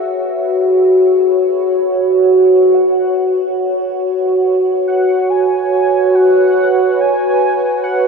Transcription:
Already playing: F#4 G#4 B4 C#5 E5 F#5
0.24 B4
1.07 C#5
2.74 F#5
4.87 F#5
5.30 G#5
6.15 F#5
7.00 G#5
7.84 F#5

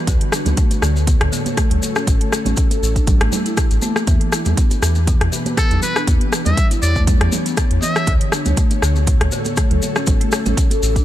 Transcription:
Already playing: F#4
0.07 D2 D3 A3 A4 C#5, kick, closed hi-hat, muted conga, high conga, maracas
0.21 closed hi-hat
0.32 D4, cross-stick, maracas
0.45 D2, closed hi-hat, muted conga, high conga, low conga, maracas
0.57 A3, kick, closed hi-hat, maracas
0.71 closed hi-hat, muted conga, maracas
0.82 D2 D3, cross-stick, maracas
0.96 muted conga, maracas
1.07 A2, kick, closed hi-hat, high conga, maracas
1.21 D2, cross-stick, closed hi-hat
1.32 D3, muted conga, high conga, maracas
1.46 closed hi-hat, high conga, maracas
1.57 A3, kick, cross-stick, closed hi-hat, muted conga, maracas
1.70 D2, closed hi-hat, low conga
1.82 muted conga, maracas
1.96 C#4, cross-stick, maracas
2.07 A1 E3 A3 D4 G4, kick, closed hi-hat, muted conga, high conga, maracas
2.21 A3, closed hi-hat
2.32 cross-stick, maracas
2.45 A1 C#4, closed hi-hat, muted conga, high conga, low conga, maracas
2.57 kick, closed hi-hat, maracas
2.71 A4, closed hi-hat, muted conga, maracas
2.82 A1, maracas
2.96 D4, kick, closed hi-hat, muted conga, maracas
3.07 kick, closed hi-hat, low conga, maracas
3.21 A1 A3, cross-stick, closed hi-hat
3.32 muted conga, high conga, low conga, maracas
3.46 E4, closed hi-hat, maracas
3.57 kick, cross-stick, closed hi-hat, maracas
3.71 A1, closed hi-hat, maracas
3.82 A3, muted conga, high conga, maracas
3.96 cross-stick, maracas
4.07 E2 E3 B3 G4 B4, kick, closed hi-hat, muted conga, high conga, maracas
4.21 closed hi-hat
4.32 E4, cross-stick, maracas
4.45 E2, closed hi-hat, muted conga, high conga, low conga, maracas
4.57 B3, kick, closed hi-hat, maracas
4.71 closed hi-hat, muted conga, maracas
4.82 E2 E3, cross-stick, maracas
4.95 muted conga, maracas
5.06 B2, kick, closed hi-hat, high conga, maracas
5.21 E2, cross-stick, closed hi-hat
5.32 E3, muted conga, high conga, maracas
5.46 closed hi-hat, high conga, maracas
5.57 B3 A4, kick, cross-stick, closed hi-hat, muted conga, maracas
5.71 E2, closed hi-hat, low conga
5.82 B4, muted conga, maracas
5.96 D4, cross-stick, maracas
6.07 E2 C#5, kick, closed hi-hat, muted conga, high conga, maracas
6.21 E3, closed hi-hat
6.33 cross-stick, maracas
6.45 E2 G3 E5, closed hi-hat, muted conga, high conga, low conga, maracas
6.57 kick, closed hi-hat, maracas
6.71 E4, closed hi-hat, muted conga, maracas
6.82 E2 D5, maracas
6.96 A3, kick, muted conga, maracas
7.07 kick, closed hi-hat, low conga, maracas
7.21 E2 E3, cross-stick, closed hi-hat
7.32 muted conga, high conga, low conga, maracas
7.46 B3, closed hi-hat, maracas
7.57 kick, cross-stick, closed hi-hat, maracas
7.71 E2, closed hi-hat
7.82 E3 E5, muted conga, high conga, maracas
7.96 cross-stick, maracas
8.07 D2 D3 A3 F#4 A4 C#5, kick, closed hi-hat, muted conga, high conga, maracas
8.21 closed hi-hat
8.32 D4, cross-stick, maracas
8.45 D2, closed hi-hat, muted conga, high conga, low conga, maracas
8.57 A3, kick, closed hi-hat, maracas
8.71 closed hi-hat, muted conga, maracas
8.82 D2 D3, cross-stick, maracas
8.96 muted conga, maracas
9.07 A2, kick, closed hi-hat, high conga, maracas
9.21 D2, cross-stick, closed hi-hat
9.32 D3, muted conga, high conga, maracas
9.45 closed hi-hat, high conga, maracas
9.57 A3, kick, cross-stick, closed hi-hat, muted conga, maracas
9.71 D2, closed hi-hat, low conga
9.82 muted conga, maracas
9.96 C#4, cross-stick, maracas
10.07 A1 D3 E3 G4, kick, closed hi-hat, muted conga, high conga, low conga, maracas
10.21 A3, closed hi-hat
10.32 cross-stick, maracas
10.46 A1 C#4, closed hi-hat, muted conga, high conga, low conga, maracas
10.57 kick, closed hi-hat, maracas
10.71 A4, closed hi-hat, muted conga, maracas
10.82 A1, maracas
10.96 D4, kick, closed hi-hat, muted conga, maracas

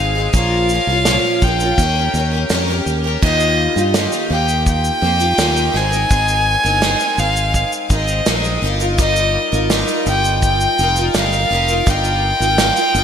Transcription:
Already playing: G#1 G#3 C4 D#4 G#4 F5
0.15 G#3 C4 D#4 G#4
0.33 A#1 A#2 F3 C#4 F4 A#4 F5, kick, shaker
0.69 F3 C#4 F4 A#4, shaker
0.87 C2 C#4 F4 A#4
1.05 A#2 F3 C#4 F4 A#4, snare, shaker
1.42 A#1 F3 C#4 F4 A#4 G5, kick, shaker
1.60 C#4 F4 A#4, shaker
1.78 D#2 D#3 C#4 G4 A#4, kick, shaker
1.96 C#4 G4 A#4
2.14 D#2 D#3 C#4 G4 A#4, shaker
2.32 C#4 G4 A#4
2.50 F2 D#3 C#4 G4 A#4, snare, shaker
2.68 C#4 G4 A#4
2.86 D#2, shaker
3.04 C#4 G4 A#4
3.22 D#2 D#3 A#3 D#4 F4 G4 D#5, kick, crash
3.40 shaker
3.76 G2 D#4 F4 G4, shaker
3.94 D#3 A#3 D#4 F4 G4, snare, shaker
4.12 shaker
4.30 D#2 A#3 D#4 F4 G4 G5
4.49 shaker
4.66 G5, kick, shaker
4.84 shaker
5.01 F2 A#3 D#4 F4 G4
5.20 D#4 F4 G4, shaker
5.38 D#2 D#3 A#3 D#4 F4 G4, snare, shaker
5.57 shaker
5.73 G#1 G#3 C4 D#4 A#4 G#5, snare
5.91 C4 D#4 A#4, shaker
6.10 G#1 G#3 C4 D#4 A#4, kick, shaker
6.28 shaker
6.64 G1 C4 D#4 A#4, shaker
6.81 G#3 C4 D#4 A#4, snare, shaker
6.99 C4 D#4 A#4, shaker
7.17 G#1 G#3 C4 D#4 A#4 F5, shaker
7.36 shaker
7.54 F5, kick, shaker
7.72 shaker
7.89 G#1 G#3 C4 D#4 A#4 D#5, kick, shaker
8.08 shaker
8.26 A#1 G#3 C4 D#4 A#4, snare, shaker
8.44 shaker
8.62 G1 G3 D#4 F4 A#4
8.80 D#4 F4 A#4, shaker
8.98 G3 D#4 F4 A#4 D#5, kick, shaker
9.16 shaker
9.52 G#1 D#4 F4 A#4, shaker
9.70 G3 D#4 F4 A#4, snare, shaker
9.88 shaker
10.06 G1 G3 D#4 F4 A#4 G5, shaker
10.24 shaker
10.42 G5, kick, shaker
10.61 shaker
10.78 F1 G3 D#4 F4 A#4, shaker
10.96 D#4 F4 A#4, shaker
11.14 G1 G3 D#4 F4 A#4 F5, snare, shaker
11.32 shaker
11.50 F1 G3 D#4 F4 A#4
11.68 D#4 F4 A#4, shaker
11.86 G1 G3 D#4 F4 A#4 G5, kick, shaker
12.04 shaker
12.40 G#1 D#4 F4 A#4, shaker
12.58 G3 D#4 F4 A#4, snare, shaker
12.76 D#4 F4 A#4, shaker
12.94 G1 G3 D#4 F4 A#4, shaker

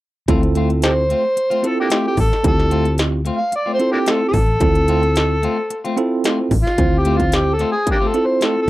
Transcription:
0.28 D2 A3 C4 E4 F4 A4, kick, closed hi-hat
0.43 muted clean electric guitar stroke, closed hi-hat
0.55 A3 C4 F4, closed hi-hat
0.70 muted clean electric guitar stroke, closed hi-hat
0.82 G4 A4 C5, snare, closed hi-hat
0.97 muted clean electric guitar stroke
1.09 A3 C4 F4, closed hi-hat
1.24 muted clean electric guitar stroke
1.36 muted clean electric guitar stroke, closed hi-hat
1.50 A3 C4 F4, closed hi-hat
1.63 C4 E4 F4 A4, muted clean electric guitar stroke, closed hi-hat
1.80 A#3 D4 G4
1.90 A3 C4 F4, snare, closed hi-hat
2.05 G4, muted clean electric guitar stroke
2.17 A1 A4, muted clean electric guitar stroke, kick, open hi-hat
2.33 snare
2.43 D2 C4 E4 F4 G4 A4, kick, closed hi-hat
2.59 muted clean electric guitar stroke, snare
2.70 A3 C4 F4, closed hi-hat
2.85 muted clean electric guitar stroke, closed hi-hat
2.98 snare, closed hi-hat
3.12 muted clean electric guitar stroke
3.25 A3 C4 F4, closed hi-hat
3.37 F5, muted clean electric guitar stroke
3.52 D5, muted clean electric guitar stroke, closed hi-hat
3.66 A3 C4 F4
3.74 C5
3.79 C4 E4 F4 A4, muted clean electric guitar stroke, closed hi-hat
3.92 A#3 D4 G4
4.06 A3 C4 F4, snare, closed hi-hat
4.11 A4
4.21 muted clean electric guitar stroke
4.29 A4
4.33 A1, muted clean electric guitar stroke, kick, open hi-hat
4.60 D2 C4 E4 F4 A4, kick, closed hi-hat
4.75 muted clean electric guitar stroke, closed hi-hat
4.88 A3 C4 F4, closed hi-hat
5.02 muted clean electric guitar stroke, closed hi-hat
5.16 snare, closed hi-hat
5.30 muted clean electric guitar stroke
5.42 A3 C4 F4, closed hi-hat
5.58 muted clean electric guitar stroke
5.70 muted clean electric guitar stroke, closed hi-hat
5.84 A3 C4 F4, closed hi-hat
5.96 C4 E4 F4 A4, muted clean electric guitar stroke, closed hi-hat
6.24 A3 C4 F4, snare, closed hi-hat
6.39 muted clean electric guitar stroke
6.51 A1, muted clean electric guitar stroke, kick, open hi-hat
6.62 F4, muted fingered electric bass stroke
6.67 snare
6.78 D2 C4 E4 F4 C5, kick, closed hi-hat
6.93 muted clean electric guitar stroke
6.99 G4
7.05 A3 C4 F4, closed hi-hat
7.17 F4, muted clean electric guitar stroke, kick, closed hi-hat
7.32 snare, closed hi-hat
7.36 G4
7.47 muted clean electric guitar stroke
7.53 A4
7.59 A3 C4 F4, snare, closed hi-hat
7.72 G#4, muted clean electric guitar stroke
7.86 muted clean electric guitar stroke, kick, closed hi-hat
7.91 A#3 D4 G4
8.01 A3 C4 F4
8.08 A4
8.14 C4 E4 F4 A4, muted clean electric guitar stroke, closed hi-hat
8.26 C5
8.41 A3 C4 F4 A4, snare, closed hi-hat
8.56 muted clean electric guitar stroke
8.62 A4

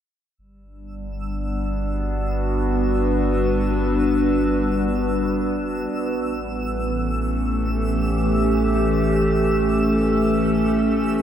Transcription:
0.37 G1 G3 E6
0.62 D4
0.77 B3
1.67 F#4
1.94 B4
5.91 A1 E3
6.28 A3
6.45 C#4
6.50 A4
7.28 G4

